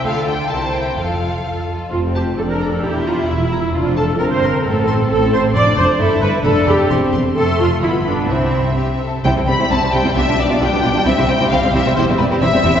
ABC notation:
X:1
M:2/4
L:1/16
Q:1/4=132
K:F
V:1 name="Violin section"
f2 g2 a2 g2 | f6 z2 | z2 a2 z2 b2 | z2 b2 z2 b2 |
z2 a2 z2 c'2 | z2 c'2 z2 c'2 | [K:C] c'2 c'2 b2 b2 | b2 b2 c'2 c'2 |
c'4 b4 | e6 z2 | g2 b2 a2 g2 | e2 d2 g4 |
e2 g2 f2 e2 | c2 B2 e4 |]
V:2 name="Violin section"
[FA]2 [FA]2 [EB]2 [EB]2 | [FA]2 [FA]2 [FA]2 [FA]2 | C4 D4 | E8 |
D4 C4 | C8 | [K:C] D4 E4 | D4 C4 |
A,4 B,4 | E4 G2 A2 | [EG] [CE] [G,C] [EG] [CE] [G,C] [EG] [CE] | [FG] [DF] [B,D] [FG] [DF] [B,D] [FG] [DF] |
[EG] [CE] [G,C] [EG] [CE] [G,C] [EG] [CE] | [EG] [CE] [G,C] [EG] [CE] [G,C] [EG] [CE] |]
V:3 name="Viola section"
A4 c4 | A6 z2 | F2 G2 A B A2 | G2 F2 E4 |
F2 A2 B c B2 | A4 A2 c2 | [K:C] d2 c2 A2 B2 | A2 G2 z4 |
A2 F2 E2 D2 | C4 z4 | [G,C] [G,C] [G,C] [G,C] [G,C] [G,C] [G,C] [G,C] | [G,D] [G,D] [G,D] [G,D] [G,D] [G,D] [G,D] [G,D] |
[G,C] [G,C] [G,C] [G,C] [G,C] [G,C] [G,C] [G,C] | [G,C] [G,C] [G,C] [G,C] [G,C] [G,C] [G,C] [G,C] |]
V:4 name="Cello section" clef=bass
D,4 C,4 | F,,4 F,,4 | F,,3 z F,,3 z | E,,3 z E,,3 z |
F,,3 z G,,3 z | A,,3 z A,,3 z | [K:C] F,,2 F,,2 G,,2 G,,2 | F,,2 F,,2 E,,2 E,,2 |
F,,4 G,,4 | C,6 z2 | C, C, C, C, C, C, C, C, | B,, B,, B,, B,, B,, B,, B,, B,, |
C, C, C, C, C, C, C, C, | E,, E,, E,, E,, E,, E,, E,, E,, |]
V:5 name="Double bass section" clef=bass
D,,4 C,,4 | F,,,4 z4 | F,,,4 F,,,4 | E,,,4 E,,,4 |
F,,,4 G,,,4 | A,,,4 A,,,4 | [K:C] F,,,2 F,,,2 G,,,2 G,,,2 | F,,,2 F,,,2 E,,,2 E,,,2 |
F,,,4 G,,,4 | C,,6 z2 | C,, z C,, z C,, z C,, z | B,,, z B,,, z B,,, z B,,, z |
C,, z C,, z C,, z C,, z | E,,, z E,,, z E,,, z E,,, z |]